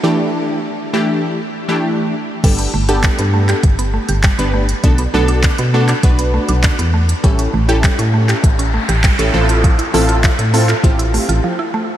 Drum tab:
CC |----------------|x---------------|----------------|----------------|
HH |----------------|xx-xxx-xxx-xxx-x|xx-xxx-xxx-xxx-x|xx-xxx-xxx-xxx-x|
CP |----------------|----x--x----x---|----x--x----x---|----x--x----x---|
BD |----------------|o---o---o---o---|o---o---o---o---|o---o---o---o---|

CC |----------------|
HH |xxoxxxoxxxox----|
CP |----x--x--------|
BD |o---o---o-------|